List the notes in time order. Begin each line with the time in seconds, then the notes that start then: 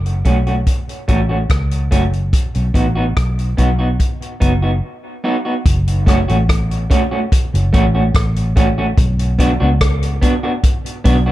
Already playing: F#1
0.06 closed hi-hat
0.25 B1 A3 C#4 F#4, kick, closed hi-hat
0.47 A3 C#4 F#4, closed hi-hat
0.67 kick, closed hi-hat
0.89 closed hi-hat
1.08 A1 A3 C#4 F#4, kick, closed hi-hat
1.29 A3 C#4 F#4
1.50 C#2, kick, cross-stick, closed hi-hat
1.71 closed hi-hat
1.91 F#1 A3 C#4 F#4, kick, closed hi-hat
2.13 closed hi-hat
2.33 kick, closed hi-hat
2.55 B1, closed hi-hat
2.74 A1 B3 D#4 F#4, kick, closed hi-hat
2.95 B3 D#4 F#4
3.17 B1, kick, cross-stick, closed hi-hat
3.39 closed hi-hat
3.57 B1 B3 D#4 F#4, kick, closed hi-hat
3.79 B3 D#4 F#4
4.00 kick, closed hi-hat
4.22 closed hi-hat
4.40 F#1 B3 D#4 F#4, kick, closed hi-hat
4.62 B3 D#4 F#4
5.24 B3 D#4 F#4
5.45 B3 D#4 F#4
5.66 F#1, kick, closed hi-hat
5.88 closed hi-hat
6.06 A3 C#4 F#4, kick, cross-stick, closed hi-hat
6.28 A1 A3 C#4 F#4, closed hi-hat
6.49 kick, cross-stick, closed hi-hat
6.71 closed hi-hat
6.90 A3 C#4 F#4, kick, closed hi-hat
7.11 A3 C#4 F#4
7.32 kick, closed hi-hat
7.54 F#1, closed hi-hat
7.73 A1 A3 C#4 F#4, kick, closed hi-hat
7.95 A3 C#4 F#4
8.15 A1, kick, cross-stick, closed hi-hat
8.36 closed hi-hat
8.56 A3 C#4 F#4, kick, closed hi-hat
8.78 A3 C#4 F#4
8.98 B1, kick, closed hi-hat
9.19 closed hi-hat
9.39 B3 D4 F#4, kick, closed hi-hat
9.60 C#2 B3 D4 F#4
9.81 kick, cross-stick, closed hi-hat
10.03 closed hi-hat
10.22 B3 D4 F#4, kick, closed hi-hat
10.43 B3 D4 F#4
10.63 kick, closed hi-hat
10.86 closed hi-hat
11.04 B1 B3 D4 F#4, kick, closed hi-hat
11.26 B3 D4 F#4